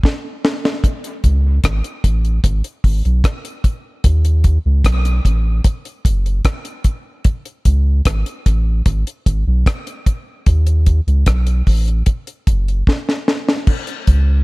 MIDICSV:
0, 0, Header, 1, 3, 480
1, 0, Start_track
1, 0, Tempo, 802139
1, 498, Time_signature, 4, 2, 24, 8
1, 8639, End_track
2, 0, Start_track
2, 0, Title_t, "Sub bass"
2, 0, Program_c, 0, 38
2, 744, Note_on_c, 0, 37, 92
2, 954, Note_off_c, 0, 37, 0
2, 983, Note_on_c, 0, 32, 104
2, 1089, Note_off_c, 0, 32, 0
2, 1223, Note_on_c, 0, 33, 79
2, 1434, Note_off_c, 0, 33, 0
2, 1460, Note_on_c, 0, 32, 105
2, 1568, Note_off_c, 0, 32, 0
2, 1700, Note_on_c, 0, 32, 76
2, 1808, Note_off_c, 0, 32, 0
2, 1825, Note_on_c, 0, 35, 89
2, 1928, Note_off_c, 0, 35, 0
2, 2422, Note_on_c, 0, 39, 97
2, 2742, Note_off_c, 0, 39, 0
2, 2785, Note_on_c, 0, 37, 96
2, 2888, Note_off_c, 0, 37, 0
2, 2901, Note_on_c, 0, 35, 103
2, 3114, Note_off_c, 0, 35, 0
2, 3143, Note_on_c, 0, 33, 81
2, 3354, Note_off_c, 0, 33, 0
2, 3623, Note_on_c, 0, 30, 98
2, 3835, Note_off_c, 0, 30, 0
2, 4583, Note_on_c, 0, 37, 83
2, 4795, Note_off_c, 0, 37, 0
2, 4824, Note_on_c, 0, 32, 99
2, 4931, Note_off_c, 0, 32, 0
2, 5065, Note_on_c, 0, 33, 82
2, 5276, Note_off_c, 0, 33, 0
2, 5303, Note_on_c, 0, 32, 97
2, 5411, Note_off_c, 0, 32, 0
2, 5545, Note_on_c, 0, 32, 77
2, 5652, Note_off_c, 0, 32, 0
2, 5666, Note_on_c, 0, 35, 97
2, 5770, Note_off_c, 0, 35, 0
2, 6264, Note_on_c, 0, 39, 90
2, 6585, Note_off_c, 0, 39, 0
2, 6624, Note_on_c, 0, 37, 91
2, 6729, Note_off_c, 0, 37, 0
2, 6743, Note_on_c, 0, 35, 100
2, 6956, Note_off_c, 0, 35, 0
2, 6984, Note_on_c, 0, 33, 80
2, 7196, Note_off_c, 0, 33, 0
2, 7466, Note_on_c, 0, 30, 104
2, 7678, Note_off_c, 0, 30, 0
2, 8424, Note_on_c, 0, 37, 96
2, 8636, Note_off_c, 0, 37, 0
2, 8639, End_track
3, 0, Start_track
3, 0, Title_t, "Drums"
3, 21, Note_on_c, 9, 36, 109
3, 30, Note_on_c, 9, 38, 53
3, 81, Note_off_c, 9, 36, 0
3, 90, Note_off_c, 9, 38, 0
3, 267, Note_on_c, 9, 38, 81
3, 327, Note_off_c, 9, 38, 0
3, 390, Note_on_c, 9, 38, 83
3, 450, Note_off_c, 9, 38, 0
3, 501, Note_on_c, 9, 36, 104
3, 503, Note_on_c, 9, 42, 82
3, 561, Note_off_c, 9, 36, 0
3, 563, Note_off_c, 9, 42, 0
3, 623, Note_on_c, 9, 42, 51
3, 683, Note_off_c, 9, 42, 0
3, 741, Note_on_c, 9, 36, 71
3, 741, Note_on_c, 9, 42, 66
3, 801, Note_off_c, 9, 36, 0
3, 801, Note_off_c, 9, 42, 0
3, 979, Note_on_c, 9, 42, 107
3, 980, Note_on_c, 9, 36, 101
3, 987, Note_on_c, 9, 37, 109
3, 1039, Note_off_c, 9, 42, 0
3, 1040, Note_off_c, 9, 36, 0
3, 1047, Note_off_c, 9, 37, 0
3, 1103, Note_on_c, 9, 42, 53
3, 1163, Note_off_c, 9, 42, 0
3, 1221, Note_on_c, 9, 36, 88
3, 1221, Note_on_c, 9, 42, 74
3, 1281, Note_off_c, 9, 36, 0
3, 1281, Note_off_c, 9, 42, 0
3, 1344, Note_on_c, 9, 42, 32
3, 1404, Note_off_c, 9, 42, 0
3, 1459, Note_on_c, 9, 36, 102
3, 1460, Note_on_c, 9, 42, 84
3, 1519, Note_off_c, 9, 36, 0
3, 1519, Note_off_c, 9, 42, 0
3, 1581, Note_on_c, 9, 42, 49
3, 1641, Note_off_c, 9, 42, 0
3, 1700, Note_on_c, 9, 36, 86
3, 1701, Note_on_c, 9, 46, 47
3, 1759, Note_off_c, 9, 36, 0
3, 1761, Note_off_c, 9, 46, 0
3, 1826, Note_on_c, 9, 42, 32
3, 1886, Note_off_c, 9, 42, 0
3, 1939, Note_on_c, 9, 36, 120
3, 1940, Note_on_c, 9, 42, 78
3, 1945, Note_on_c, 9, 37, 107
3, 1999, Note_off_c, 9, 36, 0
3, 2000, Note_off_c, 9, 42, 0
3, 2005, Note_off_c, 9, 37, 0
3, 2063, Note_on_c, 9, 42, 53
3, 2123, Note_off_c, 9, 42, 0
3, 2179, Note_on_c, 9, 36, 81
3, 2180, Note_on_c, 9, 42, 67
3, 2239, Note_off_c, 9, 36, 0
3, 2240, Note_off_c, 9, 42, 0
3, 2418, Note_on_c, 9, 42, 84
3, 2419, Note_on_c, 9, 36, 100
3, 2478, Note_off_c, 9, 42, 0
3, 2479, Note_off_c, 9, 36, 0
3, 2541, Note_on_c, 9, 42, 54
3, 2601, Note_off_c, 9, 42, 0
3, 2657, Note_on_c, 9, 42, 62
3, 2659, Note_on_c, 9, 36, 73
3, 2717, Note_off_c, 9, 42, 0
3, 2719, Note_off_c, 9, 36, 0
3, 2899, Note_on_c, 9, 36, 109
3, 2900, Note_on_c, 9, 42, 100
3, 2908, Note_on_c, 9, 37, 110
3, 2959, Note_off_c, 9, 36, 0
3, 2960, Note_off_c, 9, 42, 0
3, 2968, Note_off_c, 9, 37, 0
3, 3022, Note_on_c, 9, 42, 50
3, 3082, Note_off_c, 9, 42, 0
3, 3141, Note_on_c, 9, 36, 86
3, 3144, Note_on_c, 9, 42, 71
3, 3201, Note_off_c, 9, 36, 0
3, 3204, Note_off_c, 9, 42, 0
3, 3377, Note_on_c, 9, 42, 80
3, 3378, Note_on_c, 9, 36, 111
3, 3437, Note_off_c, 9, 42, 0
3, 3438, Note_off_c, 9, 36, 0
3, 3502, Note_on_c, 9, 42, 51
3, 3562, Note_off_c, 9, 42, 0
3, 3620, Note_on_c, 9, 36, 90
3, 3623, Note_on_c, 9, 42, 65
3, 3679, Note_off_c, 9, 36, 0
3, 3683, Note_off_c, 9, 42, 0
3, 3745, Note_on_c, 9, 42, 33
3, 3805, Note_off_c, 9, 42, 0
3, 3857, Note_on_c, 9, 42, 77
3, 3858, Note_on_c, 9, 36, 116
3, 3862, Note_on_c, 9, 37, 115
3, 3917, Note_off_c, 9, 42, 0
3, 3918, Note_off_c, 9, 36, 0
3, 3922, Note_off_c, 9, 37, 0
3, 3979, Note_on_c, 9, 42, 53
3, 4039, Note_off_c, 9, 42, 0
3, 4095, Note_on_c, 9, 42, 66
3, 4097, Note_on_c, 9, 36, 85
3, 4155, Note_off_c, 9, 42, 0
3, 4156, Note_off_c, 9, 36, 0
3, 4335, Note_on_c, 9, 42, 86
3, 4338, Note_on_c, 9, 36, 108
3, 4395, Note_off_c, 9, 42, 0
3, 4398, Note_off_c, 9, 36, 0
3, 4461, Note_on_c, 9, 42, 49
3, 4521, Note_off_c, 9, 42, 0
3, 4579, Note_on_c, 9, 42, 68
3, 4580, Note_on_c, 9, 36, 76
3, 4639, Note_off_c, 9, 42, 0
3, 4640, Note_off_c, 9, 36, 0
3, 4819, Note_on_c, 9, 42, 98
3, 4821, Note_on_c, 9, 36, 105
3, 4827, Note_on_c, 9, 37, 99
3, 4879, Note_off_c, 9, 42, 0
3, 4880, Note_off_c, 9, 36, 0
3, 4887, Note_off_c, 9, 37, 0
3, 4944, Note_on_c, 9, 42, 46
3, 5004, Note_off_c, 9, 42, 0
3, 5063, Note_on_c, 9, 36, 89
3, 5063, Note_on_c, 9, 42, 76
3, 5123, Note_off_c, 9, 36, 0
3, 5123, Note_off_c, 9, 42, 0
3, 5300, Note_on_c, 9, 42, 81
3, 5301, Note_on_c, 9, 36, 110
3, 5360, Note_off_c, 9, 42, 0
3, 5361, Note_off_c, 9, 36, 0
3, 5428, Note_on_c, 9, 42, 51
3, 5488, Note_off_c, 9, 42, 0
3, 5543, Note_on_c, 9, 36, 87
3, 5545, Note_on_c, 9, 42, 67
3, 5603, Note_off_c, 9, 36, 0
3, 5604, Note_off_c, 9, 42, 0
3, 5782, Note_on_c, 9, 36, 111
3, 5784, Note_on_c, 9, 42, 76
3, 5789, Note_on_c, 9, 37, 111
3, 5842, Note_off_c, 9, 36, 0
3, 5844, Note_off_c, 9, 42, 0
3, 5849, Note_off_c, 9, 37, 0
3, 5906, Note_on_c, 9, 42, 55
3, 5966, Note_off_c, 9, 42, 0
3, 6022, Note_on_c, 9, 36, 88
3, 6023, Note_on_c, 9, 42, 67
3, 6082, Note_off_c, 9, 36, 0
3, 6083, Note_off_c, 9, 42, 0
3, 6261, Note_on_c, 9, 42, 85
3, 6263, Note_on_c, 9, 36, 104
3, 6321, Note_off_c, 9, 42, 0
3, 6323, Note_off_c, 9, 36, 0
3, 6382, Note_on_c, 9, 42, 51
3, 6442, Note_off_c, 9, 42, 0
3, 6501, Note_on_c, 9, 42, 64
3, 6503, Note_on_c, 9, 36, 68
3, 6561, Note_off_c, 9, 42, 0
3, 6562, Note_off_c, 9, 36, 0
3, 6629, Note_on_c, 9, 42, 32
3, 6689, Note_off_c, 9, 42, 0
3, 6740, Note_on_c, 9, 42, 99
3, 6742, Note_on_c, 9, 36, 102
3, 6748, Note_on_c, 9, 37, 98
3, 6800, Note_off_c, 9, 42, 0
3, 6802, Note_off_c, 9, 36, 0
3, 6808, Note_off_c, 9, 37, 0
3, 6861, Note_on_c, 9, 42, 50
3, 6921, Note_off_c, 9, 42, 0
3, 6982, Note_on_c, 9, 46, 73
3, 6983, Note_on_c, 9, 36, 84
3, 7042, Note_off_c, 9, 46, 0
3, 7043, Note_off_c, 9, 36, 0
3, 7107, Note_on_c, 9, 42, 34
3, 7167, Note_off_c, 9, 42, 0
3, 7218, Note_on_c, 9, 42, 80
3, 7221, Note_on_c, 9, 36, 106
3, 7278, Note_off_c, 9, 42, 0
3, 7281, Note_off_c, 9, 36, 0
3, 7344, Note_on_c, 9, 42, 52
3, 7403, Note_off_c, 9, 42, 0
3, 7462, Note_on_c, 9, 42, 66
3, 7463, Note_on_c, 9, 36, 85
3, 7522, Note_off_c, 9, 36, 0
3, 7522, Note_off_c, 9, 42, 0
3, 7590, Note_on_c, 9, 42, 33
3, 7650, Note_off_c, 9, 42, 0
3, 7702, Note_on_c, 9, 36, 110
3, 7711, Note_on_c, 9, 38, 56
3, 7762, Note_off_c, 9, 36, 0
3, 7771, Note_off_c, 9, 38, 0
3, 7831, Note_on_c, 9, 38, 55
3, 7891, Note_off_c, 9, 38, 0
3, 7947, Note_on_c, 9, 38, 80
3, 8007, Note_off_c, 9, 38, 0
3, 8070, Note_on_c, 9, 38, 85
3, 8129, Note_off_c, 9, 38, 0
3, 8180, Note_on_c, 9, 49, 93
3, 8182, Note_on_c, 9, 36, 116
3, 8240, Note_off_c, 9, 49, 0
3, 8241, Note_off_c, 9, 36, 0
3, 8301, Note_on_c, 9, 42, 50
3, 8360, Note_off_c, 9, 42, 0
3, 8421, Note_on_c, 9, 42, 69
3, 8423, Note_on_c, 9, 36, 81
3, 8481, Note_off_c, 9, 42, 0
3, 8482, Note_off_c, 9, 36, 0
3, 8639, End_track
0, 0, End_of_file